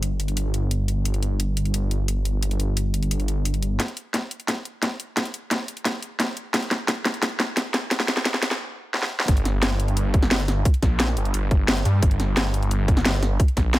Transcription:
Already playing: G1
0.03 closed hi-hat
0.20 closed hi-hat
0.28 closed hi-hat
0.37 closed hi-hat
0.54 closed hi-hat
0.71 closed hi-hat
0.88 closed hi-hat
1.05 closed hi-hat
1.14 closed hi-hat
1.23 closed hi-hat
1.40 closed hi-hat
1.57 closed hi-hat
1.65 closed hi-hat
1.74 closed hi-hat
1.91 closed hi-hat
2.08 closed hi-hat
2.25 closed hi-hat
2.43 closed hi-hat
2.51 closed hi-hat
2.60 closed hi-hat
2.77 closed hi-hat
2.94 closed hi-hat
3.03 closed hi-hat
3.11 closed hi-hat
3.20 closed hi-hat
3.28 closed hi-hat
3.45 closed hi-hat
3.54 closed hi-hat
3.62 closed hi-hat
3.80 kick, snare, closed hi-hat
3.88 closed hi-hat
3.97 closed hi-hat
4.14 kick, snare, closed hi-hat
4.31 closed hi-hat
4.40 closed hi-hat
4.48 kick, snare, closed hi-hat
4.65 closed hi-hat
4.83 kick, snare, closed hi-hat
5.00 closed hi-hat
5.17 kick, snare, closed hi-hat
5.25 closed hi-hat
5.34 closed hi-hat
5.51 kick, snare, closed hi-hat
5.68 closed hi-hat
5.77 closed hi-hat
5.85 kick, snare, closed hi-hat
6.02 closed hi-hat
6.20 kick, snare, closed hi-hat
6.37 closed hi-hat
6.54 kick, snare, closed hi-hat
6.62 closed hi-hat
6.71 snare, closed hi-hat
6.88 kick, snare, closed hi-hat
7.05 snare, closed hi-hat
7.14 closed hi-hat
7.22 kick, snare, closed hi-hat
7.40 snare, closed hi-hat
7.57 kick, snare, closed hi-hat
7.74 snare, closed hi-hat
7.91 kick, snare, closed hi-hat
8.00 snare, closed hi-hat
8.08 snare, closed hi-hat
8.17 snare
8.25 kick, snare, closed hi-hat
8.34 snare
8.43 snare, closed hi-hat
8.51 snare, closed hi-hat
8.94 snare
9.03 snare
9.20 snare
9.28 G1, kick, closed hi-hat
9.37 closed hi-hat
9.45 snare, closed hi-hat
9.63 snare, closed hi-hat
9.80 closed hi-hat
9.88 closed hi-hat
9.97 closed hi-hat
10.14 kick, closed hi-hat
10.23 snare
10.31 snare, closed hi-hat
10.40 closed hi-hat
10.48 snare, closed hi-hat
10.65 kick, closed hi-hat
10.74 closed hi-hat
10.82 A#1, kick, snare, closed hi-hat
11.00 snare, closed hi-hat
11.08 snare
11.17 G1, closed hi-hat
11.25 closed hi-hat
11.34 G1, closed hi-hat
11.51 kick, closed hi-hat
11.68 snare, closed hi-hat
11.77 closed hi-hat
11.85 G2, closed hi-hat
12.03 G1, kick, closed hi-hat
12.11 closed hi-hat
12.20 snare, closed hi-hat
12.37 snare, closed hi-hat
12.54 closed hi-hat
12.63 closed hi-hat
12.71 closed hi-hat
12.88 kick, closed hi-hat
12.97 snare
13.05 snare, closed hi-hat
13.14 closed hi-hat
13.23 snare, closed hi-hat
13.40 kick, closed hi-hat
13.48 closed hi-hat
13.57 A#1, kick, snare, closed hi-hat
13.74 snare, closed hi-hat

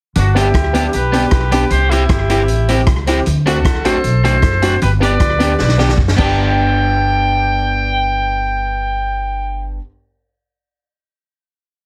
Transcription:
0.15 G1 D4 F#4, closed hi-hat
0.35 B3 D4 E4 G4, closed hi-hat
0.39 G4
0.54 D2, kick, cross-stick, closed hi-hat
0.73 B3 D4 G4, closed hi-hat
0.93 B1 G4 B4, closed hi-hat
1.12 B3 D4 G4, closed hi-hat
1.31 B1, kick, cross-stick, closed hi-hat
1.52 B3 D4 G4 B4, closed hi-hat
1.70 C2 G4 C5, closed hi-hat
1.90 C4 E4 G4, closed hi-hat
2.09 G1 E4 G4, muted clean electric guitar stroke, kick, cross-stick, closed hi-hat
2.29 C4 E4 G4, closed hi-hat
2.48 A1, closed hi-hat
2.68 C4 E4 G4, closed hi-hat
2.87 C#2, muted clean electric guitar stroke, kick, cross-stick, closed hi-hat
3.06 C4 E4 G4, closed hi-hat
3.26 D2, closed hi-hat
3.45 A3 C4 D4 F#4 A4, closed hi-hat
3.65 A1, muted clean electric guitar stroke, kick, cross-stick, closed hi-hat
3.84 A3 C4 D4 F#4 A4 C5, closed hi-hat
4.04 B1, closed hi-hat
4.23 A3 C4 D4 F#4 A4 C5, closed hi-hat
4.42 F#1, kick, cross-stick, closed hi-hat
4.61 A3 C4 D4 F#4, closed hi-hat
4.82 G1 G4 B4, closed hi-hat
5.00 B3 D4 G4 B4 D5, closed hi-hat
5.20 D2, muted clean electric guitar stroke, kick, cross-stick, closed hi-hat
5.39 B3 D4 G4, closed hi-hat
5.59 B1 B4 D5, snare
5.69 snare
5.78 B3 D4 G4, snare
5.88 snare
5.98 F#1, muted clean electric guitar stroke, kick
6.08 snare
6.16 G1 B3 D4 G4 G5, kick, crash
6.22 G4

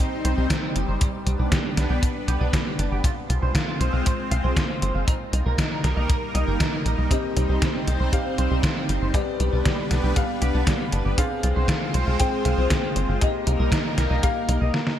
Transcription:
Already playing: G3 C4 D#4 C5
0.25 C2 C5, closed hi-hat
0.38 C2 G4
0.50 C4, kick, snare, closed hi-hat
0.63 C4
0.76 G1 G4, closed hi-hat
0.88 G1 C5
1.01 G3 B3 D4 B4, kick, closed hi-hat
1.26 C2 G3, closed hi-hat
1.39 C2 D4
1.52 G3, kick, snare, closed hi-hat
1.65 G3
1.77 C2 D4, snare, closed hi-hat
1.90 C2 G4
2.03 D4, kick, closed hi-hat
2.28 C2 G4, closed hi-hat
2.41 C2 D4
2.53 G3, kick, snare, closed hi-hat
2.66 G3
2.79 G1 D4, closed hi-hat
2.92 G1 G4
3.04 G#3 C4 F4 C5, kick, closed hi-hat
3.30 C2 F4, closed hi-hat
3.42 C2 C5
3.55 F4, kick, snare, closed hi-hat
3.68 F4
3.80 C2 C5, closed hi-hat
3.93 C2 F5
4.06 C5, kick, closed hi-hat
4.31 C2 F5, closed hi-hat
4.44 C2 C5
4.57 F4, kick, snare, closed hi-hat
4.70 F4
4.82 G1 C5, closed hi-hat
4.95 G1 F5
5.07 G3 A#3 D#4 A#4, kick, closed hi-hat
5.33 C2 D#4, closed hi-hat
5.46 C2 A#4
5.58 D#4, kick, snare, closed hi-hat
5.71 D#4
5.84 C2 A#4, snare, closed hi-hat
5.97 C2 D#5
6.09 A#4, kick, closed hi-hat
6.35 C2 D#5, closed hi-hat
6.48 G1 A#4
6.60 D#4, kick, snare, closed hi-hat
6.73 D#4
6.86 A#1 A#4, closed hi-hat
6.98 C2 D#5
7.11 C4 G4 C5 D#5, kick, closed hi-hat
7.36 C2 C4, closed hi-hat
7.49 C2 G4
7.62 C4, kick, snare, closed hi-hat
7.75 C4
7.87 C2 G4, closed hi-hat
8.00 C2 C5
8.13 C4 G4 F5, kick, closed hi-hat
8.38 C2 C5, closed hi-hat
8.51 C2 G4
8.63 C4, kick, snare, closed hi-hat
8.76 C4
8.89 G1 G4, closed hi-hat
9.02 G1 C5
9.14 G3 B3 D4 G4 B4 D5, kick, closed hi-hat
9.40 C2 G3, closed hi-hat
9.53 C2 D4
9.65 G3, kick, snare, closed hi-hat
9.78 G3
9.91 C2 D4, snare, closed hi-hat
10.04 C2 G4
10.16 B3 D4 G4 F5, kick, closed hi-hat
10.42 C2 G4, closed hi-hat
10.54 C2 D4
10.67 G3, kick, snare, closed hi-hat
10.80 G3
10.92 G1 D4, closed hi-hat
11.05 G1 G4
11.18 G#3 C4 F4 G#4 C5 F5, kick, closed hi-hat
11.43 C2 F4, closed hi-hat
11.56 C2 C5
11.68 F4, kick, snare, closed hi-hat
11.81 F4
11.94 C2 C5, closed hi-hat
12.07 C2 F5
12.20 C4 G#4 C5 G5, kick, closed hi-hat
12.45 C2 F5, closed hi-hat
12.58 C2 C5
12.70 F4, kick, snare, closed hi-hat
12.83 F4
12.96 G1 C5, closed hi-hat
13.09 G1 F5
13.21 G3 A#3 D#4 G4 A#4 D#5, kick, closed hi-hat
13.47 C2 D#4, closed hi-hat
13.60 C2 A#4
13.72 D#4, kick, snare, closed hi-hat
13.85 D#4
13.98 C2 A#4, snare, closed hi-hat
14.10 C2 D#5
14.23 A#3 G4 A#4 F5, kick, closed hi-hat
14.48 C2 D#4, closed hi-hat
14.61 C2 D#5
14.74 snare
14.87 snare

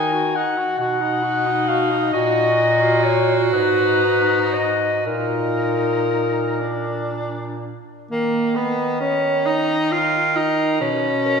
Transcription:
Already playing: D#3 D#4 G#5
0.13 F#4
0.35 D#4 F#5
0.58 F#4
0.78 B2 D#4 F#4 F#5
1.01 D#4
1.23 F#4
1.46 D#4
1.68 F#4 F5
1.91 D#4
2.13 A#2 F#4 D#5
2.82 F4
3.03 C#5
3.52 G#2 D#4 B4
4.54 D#5
5.06 A#2 D#4 F4 A#4
6.60 D4
8.11 D#3 A#3 D#5
8.56 B3
9.01 C#4
9.46 D#4 A#4 D#5
9.92 F4
10.36 D#4
10.81 B2 C#4 B4
11.25 A#4

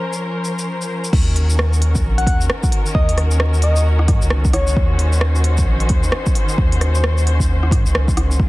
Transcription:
Already playing: F3 C#4 A#4 C5
0.13 shaker
0.45 shaker
0.59 shaker
0.82 shaker
1.04 shaker
1.13 D#2 D#3 C#4 F#4 A#4, kick, crash
1.36 open hi-hat
1.50 shaker
1.59 cross-stick
1.73 shaker
1.82 open hi-hat
1.95 kick, shaker
2.04 A#1
2.18 F#5, open hi-hat
2.27 D#2, kick, open hi-hat
2.41 shaker
2.50 cross-stick
2.63 kick, shaker
2.72 open hi-hat
2.86 shaker
2.95 D#2 D#5, kick
3.09 open hi-hat
3.18 cross-stick, open hi-hat
3.31 shaker
3.40 cross-stick
3.54 shaker
3.62 D#5, open hi-hat
3.76 shaker
3.99 cross-stick
4.08 G#2, kick, cross-stick, open hi-hat
4.22 C#2, shaker
4.30 cross-stick
4.45 kick, shaker
4.53 C#5, cross-stick, open hi-hat
4.67 shaker
4.76 D#2 C5, kick
4.99 open hi-hat
5.13 shaker
5.21 cross-stick
5.36 shaker
5.44 open hi-hat
5.58 kick, shaker
5.67 A#1
5.80 open hi-hat
5.89 D#2, kick, open hi-hat
6.04 shaker
6.12 cross-stick
6.26 kick, shaker
6.35 open hi-hat
6.49 shaker
6.58 D#2, kick
6.72 open hi-hat
6.81 cross-stick, open hi-hat
6.95 shaker
7.04 cross-stick
7.18 shaker
7.27 open hi-hat
7.40 kick, shaker
7.63 cross-stick
7.71 G#2, kick, cross-stick, open hi-hat
7.85 C#2, shaker
7.95 C#2, cross-stick
8.08 kick, shaker
8.17 cross-stick, open hi-hat
8.31 shaker
8.39 C#2 C#3 C4 F4 G#4, kick

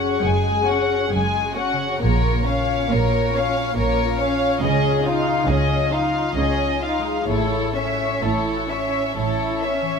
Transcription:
Already playing: F#2 C#4 F#4 G#4 C#5 F#5
0.19 F#1 F#2 G#3 F#4 G#4
0.26 G#5
0.52 G#4
0.63 F#4
0.67 C#4 F#5
0.81 F#4
1.09 F#1 F#2 G#3 C#4 G#4
1.15 G#5
1.42 F#4
1.53 C#4 F#4
1.60 F#5
1.72 C#3
2.00 A#1 A#2 A#3 A#4 C#5
2.32 F4
2.45 C#4 C#5
2.49 F5
2.62 F#4
2.90 A#1 A#2 A#3 F4 A#4 C#5
3.20 F#4
3.33 C#4 C#5 F5
3.49 F4
3.76 A#1 A#2 A#3 C#4 A#4 C#5
4.05 F4
4.18 C#4 C#5
4.24 F5
4.61 C#2 C#3 C#4 G#4 D#5
4.91 F4
5.05 D#4 F4
5.09 F5
5.20 F#4
5.46 C#2 C#3 C#4 F4 G#4
5.51 D#5
5.77 F#3
5.91 D#4 F4 F5
6.07 F4
6.36 C#2 C#3 C#4 D#4 G#4 D#5
6.68 F4
6.83 D#4 F4 F5
6.99 G#3
7.29 A1 A2 E4 A4 C#5
7.61 E4
7.74 C#4 C#5 E5
7.93 F#4
8.21 A1 A2 E4 A4 C#5
8.25 E4
8.56 F#4
8.70 C#4 C#5 E5
8.88 E4
9.16 A1 A2 C#4 E4 A4 C#5
9.51 E4
9.63 C#4 C#5 E5
9.82 E3

